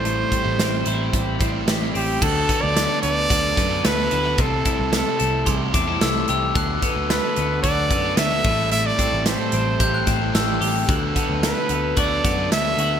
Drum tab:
CC |--------|x-------|--------|-------x|
HH |xxxxxxxo|-xxxxxxx|xxxxxxxx|xxxxxxx-|
SD |--o---o-|--o--oo-|--o--oo-|--o---o-|
BD |-o--oo--|oo--oo--|oo--oo--|oo--oo-o|

CC |--------|--------|
HH |xxxxxxxo|xxxxxxxx|
SD |--o--oo-|--o--oo-|
BD |-o--oo--|oo--oo--|